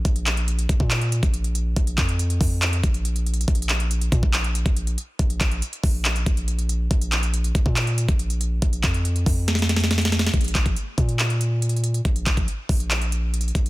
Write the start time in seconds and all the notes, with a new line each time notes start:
0.05 A#1, kick, closed hi-hat
0.16 closed hi-hat
0.26 clap, closed hi-hat
0.37 closed hi-hat
0.48 closed hi-hat
0.59 closed hi-hat
0.69 A#1, kick, closed hi-hat
0.80 A#2, kick
0.91 clap, closed hi-hat
1.01 closed hi-hat
1.12 closed hi-hat
1.23 A#1, kick, closed hi-hat
1.34 closed hi-hat
1.44 closed hi-hat
1.55 closed hi-hat
1.76 A#1, kick, closed hi-hat
1.87 closed hi-hat
1.98 F2, kick, clap, closed hi-hat
2.09 closed hi-hat
2.19 closed hi-hat
2.30 closed hi-hat
2.41 F2, kick, open hi-hat
2.62 clap, closed hi-hat
2.73 closed hi-hat
2.84 A#1, kick, closed hi-hat
2.94 closed hi-hat
3.05 closed hi-hat
3.16 closed hi-hat
3.26 closed hi-hat
3.34 closed hi-hat
3.41 closed hi-hat
3.48 A#1, kick, closed hi-hat
3.55 closed hi-hat
3.62 closed hi-hat
3.69 clap, closed hi-hat
3.80 closed hi-hat
3.91 closed hi-hat
4.01 closed hi-hat
4.12 A#2, kick, closed hi-hat
4.23 A#1, kick
4.34 clap, closed hi-hat
4.44 closed hi-hat
4.55 closed hi-hat
4.66 A#1, kick, closed hi-hat
4.76 closed hi-hat
4.87 closed hi-hat
4.98 closed hi-hat
5.19 A#1, kick, closed hi-hat
5.30 closed hi-hat
5.41 A#1, kick, clap, closed hi-hat
5.51 closed hi-hat
5.62 closed hi-hat
5.73 closed hi-hat
5.84 A#1, kick, open hi-hat
6.05 clap, closed hi-hat
6.16 closed hi-hat
6.26 A#1, kick, closed hi-hat
6.37 closed hi-hat
6.48 closed hi-hat
6.59 closed hi-hat
6.69 closed hi-hat
6.91 A#1, kick, closed hi-hat
7.01 closed hi-hat
7.12 clap, closed hi-hat
7.23 closed hi-hat
7.34 closed hi-hat
7.44 closed hi-hat
7.55 A#1, kick, closed hi-hat
7.66 A#2, kick
7.76 clap, closed hi-hat
7.87 closed hi-hat
7.98 closed hi-hat
8.09 A#1, kick, closed hi-hat
8.19 closed hi-hat
8.30 closed hi-hat
8.41 closed hi-hat
8.62 A#1, kick, closed hi-hat
8.73 closed hi-hat
8.84 F2, kick, clap, closed hi-hat
8.94 closed hi-hat
9.05 closed hi-hat
9.16 closed hi-hat
9.26 F2, kick, open hi-hat
9.48 snare, closed hi-hat
9.55 snare, closed hi-hat
9.62 snare
9.69 snare, closed hi-hat
9.76 snare, closed hi-hat
9.84 snare
9.91 snare, closed hi-hat
9.98 snare, closed hi-hat
10.05 snare
10.12 snare, closed hi-hat
10.19 snare, closed hi-hat
10.26 snare, closed hi-hat
10.34 A#1, kick, closed hi-hat
10.41 closed hi-hat
10.44 closed hi-hat
10.48 closed hi-hat
10.55 A#1, kick, clap, closed hi-hat
10.66 kick, closed hi-hat
10.76 closed hi-hat
10.98 A#2, kick, closed hi-hat
11.09 closed hi-hat
11.19 clap, closed hi-hat
11.30 closed hi-hat
11.41 closed hi-hat
11.62 closed hi-hat
11.69 closed hi-hat
11.77 closed hi-hat
11.84 closed hi-hat
11.94 closed hi-hat
12.05 A#1, kick, closed hi-hat
12.16 closed hi-hat
12.26 A#1, kick, clap, closed hi-hat
12.37 kick, closed hi-hat
12.48 closed hi-hat
12.69 A#1, kick, open hi-hat
12.80 closed hi-hat
12.91 clap, closed hi-hat
13.02 closed hi-hat
13.12 closed hi-hat
13.34 closed hi-hat
13.41 closed hi-hat
13.48 closed hi-hat
13.55 A#1, kick, closed hi-hat
13.66 closed hi-hat